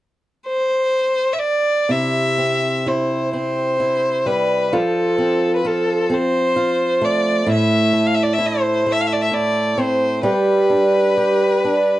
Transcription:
0.47 1.34 C5 medium
1.33 1.40 E5 soft
1.39 1.92 D5 medium
1.89 4.72 C3 soft
1.89 2.85 E4 soft
1.89 2.89 E5 medium
2.38 3.33 C4 soft
2.86 3.79 E4 soft
2.86 3.34 C5 medium
3.33 5.18 C4 soft
3.33 4.28 C5 medium
3.80 4.72 E4 soft
4.26 4.81 G3 soft
4.26 4.74 B4 medium
4.72 7.49 F3 medium
4.72 5.63 F4 soft
4.72 5.56 A4 medium
5.18 6.09 C4 soft
5.56 5.68 B4 soft
5.65 6.55 F4 soft
5.65 6.15 A4 medium
6.10 7.92 C4 soft
6.14 7.06 C5 medium
6.56 7.47 F4 soft
7.01 7.93 A3 soft
7.01 7.50 D5 medium
7.47 10.24 A2 medium
7.47 8.37 E4 soft
7.52 8.08 E5 medium
7.93 8.85 A3 soft
8.07 8.16 F5 medium
8.15 8.24 E5 medium
8.23 8.35 D5 medium
8.33 8.48 E5 medium
8.39 9.30 E4 medium
8.46 8.94 C5 medium
8.86 10.34 A3 soft
8.92 9.02 E5 medium
9.01 9.09 F5 soft
9.07 9.14 E5 medium
9.13 9.23 D5 soft
9.21 9.23 E5 medium
9.21 9.35 E5 soft
9.32 10.24 E4 soft
9.32 9.81 D5 medium
9.78 10.33 C4 soft
9.78 10.25 C5 medium
10.23 12.00 G3 medium
10.23 11.17 G4 soft
10.23 12.00 B4 medium
10.70 11.63 D4 soft
11.17 12.00 G4 soft
11.64 12.00 D4 soft

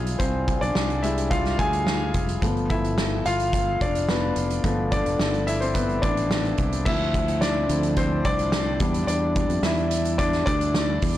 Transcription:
0.00 0.18 B1 medium
0.00 0.63 D4 medium
0.00 1.05 E4 medium
0.00 1.32 F4 medium
0.00 1.60 G#4 medium
0.00 0.61 D5 medium
0.00 1.03 E5 medium
0.00 1.31 F5 medium
0.00 1.59 G#5 medium
0.06 closed hi-hat soft
0.19 0.59 C2 medium
0.19 0.59 C4 medium
0.19 0.58 C5 medium
0.19 kick medium
0.19 closed hi-hat medium
0.48 kick medium
0.48 closed hi-hat soft
0.61 0.74 B1 medium
0.61 1.01 D4 medium
0.61 1.04 D5 medium
0.61 closed hi-hat soft
0.75 1.55 C2 medium
0.75 snare loud
0.90 closed hi-hat soft
1.03 1.40 G3 soft
1.03 1.41 G#3 soft
1.03 1.41 D4 medium
1.03 1.30 E4 medium
1.03 1.32 E5 medium
1.03 closed hi-hat medium
1.18 closed hi-hat soft
1.31 1.57 F4 medium
1.31 1.59 F5 medium
1.31 kick medium
1.31 closed hi-hat medium
1.45 snare soft
1.45 closed hi-hat soft
1.59 2.10 D2 medium
1.59 2.11 G#4 medium
1.59 2.10 G#5 loud
1.59 kick medium
1.59 closed hi-hat medium
1.73 closed hi-hat medium
1.87 snare loud
2.14 2.40 F1 medium
2.14 kick medium
2.14 closed hi-hat medium
2.29 closed hi-hat soft
2.42 3.22 G1 medium
2.42 4.61 F3 soft
2.42 4.61 A3 soft
2.42 4.09 B3 soft
2.42 kick loud
2.42 closed hi-hat medium
2.57 closed hi-hat soft
2.70 3.22 E4 medium
2.70 3.21 E5 medium
2.70 kick medium
2.70 closed hi-hat soft
2.84 closed hi-hat soft
2.98 snare loud
3.25 3.77 G1 medium
3.25 3.78 F4 medium
3.25 3.77 F5 medium
3.25 closed hi-hat medium
3.40 closed hi-hat soft
3.53 kick medium
3.53 closed hi-hat medium
3.81 4.33 F1 medium
3.81 4.08 D4 medium
3.81 4.07 D5 medium
3.81 kick medium
3.81 closed hi-hat medium
3.95 closed hi-hat soft
4.09 4.48 B3 medium
4.09 4.47 B4 medium
4.09 snare loud
4.36 4.62 F1 medium
4.36 closed hi-hat medium
4.50 closed hi-hat soft
4.64 5.03 G1 medium
4.64 5.01 F3 medium
4.64 5.01 A3 soft
4.64 5.02 B3 medium
4.64 kick medium
4.64 closed hi-hat medium
4.92 5.44 D4 medium
4.92 5.44 D5 medium
4.92 kick medium
4.92 closed hi-hat medium
5.06 5.19 F1 medium
5.06 closed hi-hat soft
5.19 5.99 G1 loud
5.19 snare loud
5.34 closed hi-hat soft
5.47 5.61 E4 medium
5.47 5.60 E5 medium
5.47 closed hi-hat medium
5.61 5.75 C4 medium
5.61 5.74 C5 medium
5.61 closed hi-hat soft
5.74 6.55 B3 medium
5.74 6.54 B4 medium
5.74 kick medium
5.74 closed hi-hat medium
5.89 closed hi-hat soft
6.02 6.55 A1 medium
6.02 6.83 D4 medium
6.02 6.88 D5 medium
6.02 kick medium
6.02 closed hi-hat medium
6.17 closed hi-hat soft
6.31 snare loud
6.45 closed hi-hat soft
6.58 6.84 C2 medium
6.58 kick medium
6.58 closed hi-hat medium
6.72 closed hi-hat soft
6.85 7.66 D2 medium
6.85 8.79 D3 medium
6.85 7.66 F3 soft
6.85 8.79 F3 medium
6.85 8.79 A3 medium
6.85 8.79 C4 medium
6.85 7.66 C4 soft
6.85 11.18 E4 medium
6.85 7.39 E4 medium
6.85 7.43 E5 medium
6.85 kick loud
6.85 crash medium
7.14 kick medium
7.14 closed hi-hat medium
7.28 closed hi-hat soft
7.41 7.94 D4 medium
7.41 7.93 D5 medium
7.41 snare medium
7.41 closed hi-hat medium
7.69 8.21 D2 medium
7.69 7.95 F3 soft
7.69 7.95 C4 soft
7.69 7.95 E4 soft
7.69 closed hi-hat medium
7.83 closed hi-hat soft
7.96 8.24 C4 medium
7.96 8.23 C5 medium
7.96 kick medium
7.96 closed hi-hat medium
8.25 8.77 C2 medium
8.25 8.80 D4 medium
8.25 9.05 D5 loud
8.25 kick medium
8.25 closed hi-hat medium
8.39 closed hi-hat soft
8.52 snare loud
8.52 closed hi-hat medium
8.80 9.06 E2 medium
8.80 11.18 G3 medium
8.80 9.60 G3 soft
8.80 9.60 B3 soft
8.80 11.18 D4 medium
8.80 9.08 D4 soft
8.80 kick medium
8.80 closed hi-hat medium
8.94 closed hi-hat soft
9.07 9.47 E2 medium
9.07 9.61 D4 medium
9.07 9.65 D5 medium
9.07 closed hi-hat medium
9.36 kick medium
9.36 closed hi-hat medium
9.49 9.62 F2 medium
9.49 closed hi-hat soft
9.63 10.43 E2 medium
9.63 10.17 E4 medium
9.63 10.15 E5 medium
9.63 snare loud
9.63 closed hi-hat medium
9.77 closed hi-hat soft
9.91 closed hi-hat medium
10.05 closed hi-hat medium
10.18 10.46 D4 medium
10.18 10.44 D5 medium
10.18 kick medium
10.18 closed hi-hat medium
10.33 snare soft
10.33 closed hi-hat soft
10.46 10.99 D2 medium
10.46 11.18 D4 medium
10.46 11.18 D5 loud
10.46 kick medium
10.46 closed hi-hat medium
10.61 closed hi-hat medium
10.74 snare loud
10.74 closed hi-hat medium
11.02 11.18 E2 medium
11.02 kick medium
11.02 open hi-hat medium

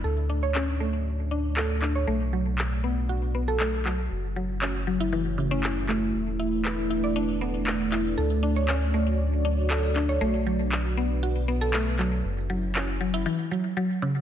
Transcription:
0.00 4.07 D4 medium
0.00 2.03 D5 medium
0.04 2.05 D2 medium
0.04 4.07 A3 medium
0.04 2.06 F#4 medium
0.04 0.16 A4 medium
0.04 2.05 C#5 medium
0.30 0.41 D4 medium
0.43 0.54 C#5 medium
0.55 0.62 C#4 loud
0.55 clap loud
0.80 0.92 A3 medium
1.31 1.38 D4 medium
1.57 1.69 A4 medium
1.57 clap loud
1.82 1.94 D4 medium
1.82 clap medium
1.95 2.06 C#5 loud
2.07 4.08 B1 medium
2.07 2.15 A3 medium
2.07 6.10 F#4 medium
2.07 4.09 B4 medium
2.07 4.09 D5 medium
2.33 2.45 F#3 medium
2.58 clap loud
2.84 2.91 B3 medium
3.09 3.21 F#4 medium
3.35 3.47 B3 medium
3.48 3.59 A4 loud
3.60 3.67 A3 medium
3.60 clap loud
3.85 3.97 F#3 medium
3.85 clap medium
4.11 6.12 F#1 medium
4.11 13.22 A3 medium
4.11 6.12 C#4 medium
4.11 8.14 E4 medium
4.11 6.12 C#5 medium
4.36 4.44 F#3 medium
4.62 4.74 C#4 medium
4.62 clap loud
4.87 4.99 F#3 medium
5.00 5.11 E4 medium
5.13 5.20 E3 loud
5.38 5.50 C#3 medium
5.51 5.62 C#4 loud
5.63 clap loud
5.89 6.01 A3 medium
5.89 clap medium
6.14 8.15 E1 medium
6.14 8.16 D4 medium
6.14 8.16 B4 medium
6.14 12.21 D5 medium
6.40 6.47 E4 medium
6.65 6.77 B4 medium
6.65 clap medium
6.91 7.02 E4 medium
7.04 7.15 D5 medium
7.16 7.23 D4 loud
7.41 7.53 B3 medium
7.67 clap loud
7.92 7.99 E4 medium
7.92 clap medium
8.17 10.19 D2 medium
8.17 12.20 D4 medium
8.17 12.20 F#4 medium
8.17 8.30 A4 medium
8.17 10.19 C#5 medium
8.43 8.55 D4 medium
8.56 8.67 C#5 loud
8.68 8.76 C#4 loud
8.68 clap medium
8.94 9.06 A3 medium
9.45 9.52 D4 medium
9.70 9.82 A4 medium
9.70 clap medium
9.96 10.08 D4 medium
9.96 clap medium
10.09 10.20 C#5 loud
10.21 12.22 B1 medium
10.21 10.28 A3 loud
10.21 12.23 B4 medium
10.47 10.58 F#3 medium
10.72 clap medium
10.97 11.05 B3 medium
11.23 11.35 F#4 medium
11.48 11.60 B3 medium
11.61 11.72 A4 loud
11.74 11.81 A3 loud
11.74 clap medium
11.99 12.11 F#3 medium
11.99 clap medium
12.25 13.26 F#1 medium
12.25 13.25 C#4 medium
12.25 13.25 E4 medium
12.25 13.25 F#4 medium
12.25 13.25 C#5 medium
12.50 12.57 F#3 medium
12.75 12.87 C#4 medium
12.75 clap medium
13.01 13.13 F#3 medium
13.14 13.25 E4 loud
13.26 13.33 E3 loud
13.51 13.63 F#3 medium
13.77 13.89 F#3 medium
14.02 14.15 C#3 loud

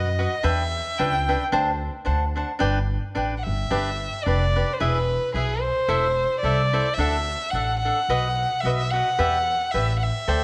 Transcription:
0.00 0.25 F#2 medium
0.00 0.45 D#5 medium
0.18 0.34 F#4 soft
0.18 0.34 B4 soft
0.18 0.35 D#5 soft
0.18 0.34 F#5 soft
0.43 0.79 E2 medium
0.43 0.62 D4 medium
0.43 0.62 B4 medium
0.43 1.00 E5 medium
0.43 0.62 E5 medium
0.43 0.62 G5 medium
0.98 1.34 C#2 medium
0.98 1.17 D4 medium
0.98 1.17 B4 soft
0.98 1.17 E5 soft
0.98 1.40 G5 medium
0.98 1.17 G5 medium
1.29 1.43 D4 soft
1.29 1.43 B4 soft
1.29 1.43 E5 soft
1.29 1.43 G5 soft
1.52 1.87 D2 medium
1.52 1.70 D4 medium
1.52 1.70 C5 medium
1.52 1.70 G5 medium
1.52 1.71 A5 medium
2.05 2.42 D2 medium
2.05 2.23 D4 medium
2.05 2.24 C5 medium
2.05 2.24 F#5 medium
2.05 2.24 A5 medium
2.35 2.50 D4 soft
2.35 2.51 C5 soft
2.35 2.51 F#5 soft
2.35 2.51 A5 soft
2.59 2.96 G1 medium
2.59 2.77 D4 medium
2.59 2.78 B4 medium
2.59 2.78 D5 medium
2.59 2.78 G5 medium
3.15 3.43 A1 medium
3.15 3.33 D4 soft
3.15 3.34 B4 medium
3.15 3.34 D5 medium
3.15 3.34 G5 medium
3.38 3.45 F#5 soft
3.43 3.69 G1 medium
3.43 4.26 E5 medium
3.71 4.07 G1 medium
3.71 3.89 D4 medium
3.71 3.89 G4 medium
3.71 3.90 B4 medium
3.71 3.89 D5 medium
4.24 4.62 F1 medium
4.24 4.44 D4 soft
4.24 4.45 G4 soft
4.24 4.45 B4 soft
4.24 4.75 D5 medium
4.24 4.45 D5 soft
4.56 4.71 D4 soft
4.56 4.71 G4 soft
4.56 4.71 B4 soft
4.56 4.71 D5 soft
4.73 4.80 C5 soft
4.79 5.16 E1 medium
4.79 4.98 E4 medium
4.79 4.98 G#4 medium
4.79 5.34 B4 medium
4.79 4.98 B4 medium
4.79 4.99 E5 medium
5.34 5.69 B1 medium
5.34 5.52 E4 soft
5.34 5.63 G#4 medium
5.34 5.53 G#4 medium
5.34 5.53 B4 medium
5.34 5.53 E5 soft
5.61 6.39 C5 medium
5.88 6.24 E1 medium
5.88 6.06 E4 medium
5.88 6.06 A4 medium
5.88 6.07 C5 medium
5.88 6.07 E5 medium
6.40 6.78 C2 medium
6.40 6.61 E4 medium
6.40 6.95 D5 medium
6.44 6.61 A4 soft
6.44 6.61 C5 medium
6.44 6.62 E5 medium
6.73 6.87 E4 soft
6.73 6.88 A4 soft
6.73 6.88 C5 soft
6.73 6.88 E5 soft
6.94 7.33 D2 medium
6.94 7.52 E5 medium
6.98 7.16 D4 medium
6.98 7.16 A4 medium
6.98 7.17 E5 medium
6.98 7.17 F#5 medium
7.50 7.89 A1 medium
7.50 7.71 D4 soft
7.50 7.78 F#5 medium
7.55 7.72 A4 soft
7.55 7.72 E5 soft
7.55 7.72 F#5 soft
7.79 8.62 F#5 medium
7.85 7.99 D4 soft
7.85 7.99 A4 soft
7.85 8.00 E5 soft
7.85 8.00 F#5 soft
8.08 8.44 B1 medium
8.08 8.27 F#4 medium
8.08 8.27 B4 medium
8.08 8.27 D#5 medium
8.08 8.28 F#5 medium
8.61 8.99 B1 medium
8.61 8.92 E5 medium
8.65 8.82 F#4 soft
8.65 8.83 B4 soft
8.65 8.83 D#5 medium
8.65 8.83 F#5 medium
8.91 9.09 F#4 soft
8.91 9.09 B4 soft
8.91 9.73 F#5 medium
8.95 9.10 D#5 soft
8.95 9.10 F#5 soft
9.19 9.55 E2 medium
9.19 9.37 G4 medium
9.19 9.37 B4 medium
9.19 9.37 D5 medium
9.19 9.37 E5 medium
9.71 10.09 A1 medium
9.71 9.91 G4 soft
9.71 9.92 B4 medium
9.71 9.92 D5 medium
9.71 9.95 E5 medium
9.71 9.92 E5 soft
9.98 10.05 F#5 medium
10.03 10.44 E5 medium
10.28 10.44 D2 medium
10.28 10.44 A4 medium
10.28 10.44 C5 medium
10.28 10.44 D5 medium
10.28 10.44 G5 medium

